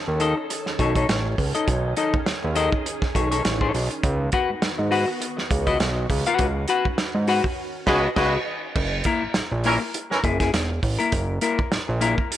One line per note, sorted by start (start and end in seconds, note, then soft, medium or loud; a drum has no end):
0.00 8.72 D#3 medium
0.00 3.99 C#4 medium
0.00 1.65 A4 medium
0.07 0.34 D#2 medium
0.07 muted clean electric guitar stroke soft
0.20 0.37 D#4 medium
0.20 0.37 A4 medium
0.20 0.37 D#5 loud
0.20 closed hi-hat medium
0.38 muted clean electric guitar stroke medium
0.50 muted clean electric guitar stroke soft
0.50 closed hi-hat medium
0.66 muted clean electric guitar stroke soft
0.66 snare soft
0.79 1.06 B1 loud
0.79 0.92 D#4 medium
0.79 0.92 A4 medium
0.79 0.93 C#5 medium
0.79 kick medium
0.79 closed hi-hat medium
0.96 1.07 D#4 medium
0.96 1.06 A4 medium
0.96 1.06 C#5 medium
0.96 kick medium
0.96 closed hi-hat medium
1.09 1.35 A1 loud
1.09 muted clean electric guitar stroke soft
1.09 snare loud
1.09 closed hi-hat medium
1.25 muted clean electric guitar stroke soft
1.38 1.53 C#2 medium
1.38 kick medium
1.38 open hi-hat medium
1.55 1.68 D#4 medium
1.55 1.68 A4 medium
1.55 1.68 D#5 medium
1.55 closed hi-hat soft
1.68 1.94 B1 loud
1.68 4.01 G#4 medium
1.68 kick loud
1.68 closed hi-hat medium
1.97 2.13 D#4 medium
1.97 2.14 A4 medium
1.97 2.14 D#5 medium
1.97 closed hi-hat medium
2.14 2.19 D#2 medium
2.14 kick loud
2.26 2.34 D#2 soft
2.26 muted clean electric guitar stroke soft
2.26 snare loud
2.26 closed hi-hat medium
2.43 2.70 D#2 medium
2.43 muted clean electric guitar stroke soft
2.55 2.72 D#4 medium
2.55 2.72 A4 medium
2.55 2.72 D#5 loud
2.55 closed hi-hat medium
2.72 muted clean electric guitar stroke medium
2.72 kick loud
2.86 muted clean electric guitar stroke soft
2.86 closed hi-hat medium
3.02 muted clean electric guitar stroke soft
3.02 kick loud
3.02 snare soft
3.15 3.42 B1 medium
3.15 3.28 D#4 medium
3.15 3.28 A4 medium
3.15 3.28 C#5 medium
3.15 kick medium
3.15 closed hi-hat medium
3.31 3.42 D#4 medium
3.31 3.42 A4 medium
3.31 3.41 C#5 medium
3.31 closed hi-hat soft
3.45 3.71 A1 loud
3.45 muted clean electric guitar stroke soft
3.45 snare loud
3.45 closed hi-hat loud
3.61 3.73 D#4 medium
3.61 3.73 A4 medium
3.61 3.74 C#5 medium
3.61 kick loud
3.74 3.89 B1 medium
3.74 muted clean electric guitar stroke soft
3.74 open hi-hat medium
3.91 muted clean electric guitar stroke soft
3.91 closed hi-hat soft
4.03 4.30 C#2 loud
4.03 6.37 B3 medium
4.03 8.72 F#4 medium
4.03 kick loud
4.03 closed hi-hat medium
4.32 4.49 F#4 medium
4.32 4.50 B4 medium
4.32 4.50 F#5 medium
4.32 kick medium
4.32 closed hi-hat medium
4.50 4.55 G#2 soft
4.62 4.69 G#2 soft
4.62 muted clean electric guitar stroke soft
4.62 snare loud
4.62 closed hi-hat medium
4.78 5.05 G#2 medium
4.78 muted clean electric guitar stroke medium
4.91 5.08 F#4 loud
4.91 5.07 B4 loud
4.91 5.07 F#5 loud
4.91 open hi-hat soft
5.08 muted clean electric guitar stroke medium
5.20 muted clean electric guitar stroke soft
5.20 closed hi-hat loud
5.37 muted clean electric guitar stroke soft
5.37 snare soft
5.51 5.77 C#2 medium
5.51 kick loud
5.51 closed hi-hat medium
5.67 5.79 F#4 medium
5.67 5.79 B4 medium
5.67 5.80 D#5 loud
5.67 kick medium
5.67 closed hi-hat soft
5.80 6.07 B1 loud
5.80 muted clean electric guitar stroke soft
5.80 snare loud
5.80 closed hi-hat medium
5.97 muted clean electric guitar stroke soft
6.10 6.25 C#2 medium
6.10 kick loud
6.10 open hi-hat medium
6.26 6.46 F#4 medium
6.26 6.46 B4 medium
6.26 6.45 F#5 loud
6.26 closed hi-hat soft
6.39 6.66 C#2 loud
6.39 8.73 C#4 medium
6.39 kick loud
6.39 closed hi-hat medium
6.68 6.85 F#4 medium
6.68 6.86 B4 loud
6.68 6.86 F#5 medium
6.68 closed hi-hat medium
6.85 6.91 G#2 soft
6.85 kick medium
6.98 7.05 G#2 soft
6.98 muted clean electric guitar stroke soft
6.98 snare loud
6.98 closed hi-hat medium
7.15 7.41 G#2 loud
7.15 muted clean electric guitar stroke soft
7.27 7.44 F#4 medium
7.27 7.44 B4 loud
7.27 7.44 F#5 loud
7.27 open hi-hat soft
7.44 muted clean electric guitar stroke soft
7.44 kick medium
7.87 8.08 C#2 loud
7.87 8.03 G#3 loud
7.87 8.03 F#4 loud
7.87 8.08 F#4 loud
7.87 8.02 B4 loud
7.87 8.08 B4 loud
7.87 8.08 D#5 loud
7.87 kick loud
7.87 snare loud
7.87 crash medium
8.16 8.37 C#2 loud
8.16 8.32 G#3 loud
8.16 8.32 F#4 loud
8.16 8.38 F#4 loud
8.16 8.32 B4 loud
8.16 8.38 B4 loud
8.16 8.37 D#5 medium
8.16 kick loud
8.16 snare loud
8.16 crash medium
8.75 9.03 F#1 loud
8.75 kick loud
8.75 crash loud
9.04 9.22 A#3 loud
9.04 9.22 E4 medium
9.04 9.22 A#4 medium
9.04 kick medium
9.04 closed hi-hat medium
9.22 9.28 A#1 medium
9.34 9.42 A#1 soft
9.34 muted clean electric guitar stroke soft
9.34 snare loud
9.34 closed hi-hat medium
9.52 9.78 A#1 loud
9.52 muted clean electric guitar stroke medium
9.64 9.75 E3 loud
9.64 9.81 A#3 medium
9.64 9.75 C#4 loud
9.64 9.81 E4 medium
9.64 9.75 A#4 loud
9.64 9.81 A#4 medium
9.64 open hi-hat soft
9.82 muted clean electric guitar stroke soft
9.94 muted clean electric guitar stroke soft
9.94 closed hi-hat loud
10.10 10.20 E3 medium
10.10 10.19 C#4 medium
10.10 10.19 A#4 loud
10.10 muted clean electric guitar stroke soft
10.10 snare soft
10.24 10.50 F#1 loud
10.24 10.37 A#3 medium
10.24 10.37 E4 medium
10.24 10.37 G#4 medium
10.24 kick loud
10.24 closed hi-hat medium
10.40 10.51 A#3 medium
10.40 10.51 E4 medium
10.40 10.50 G#4 medium
10.40 kick medium
10.40 snare soft
10.40 closed hi-hat medium
10.53 10.80 E1 medium
10.53 muted clean electric guitar stroke soft
10.53 snare loud
10.53 closed hi-hat medium
10.70 muted clean electric guitar stroke soft
10.83 10.98 A1 medium
10.83 kick medium
10.83 open hi-hat medium
10.99 11.13 A#3 medium
10.99 11.12 E4 medium
10.99 11.12 A#4 medium
10.99 closed hi-hat soft
11.12 11.39 F#1 loud
11.12 kick loud
11.12 closed hi-hat loud
11.41 11.58 A#3 medium
11.41 11.59 E4 medium
11.41 11.59 A#4 medium
11.41 closed hi-hat medium
11.59 11.64 A#1 medium
11.59 kick loud
11.71 11.79 A#1 soft
11.71 muted clean electric guitar stroke soft
11.71 snare loud
11.71 closed hi-hat medium
11.88 12.15 A#1 medium
11.88 muted clean electric guitar stroke medium
12.01 12.18 A#3 medium
12.01 12.17 E4 loud
12.01 12.17 A#4 loud
12.01 closed hi-hat medium
12.18 muted clean electric guitar stroke soft
12.18 kick medium
12.31 muted clean electric guitar stroke soft
12.31 closed hi-hat loud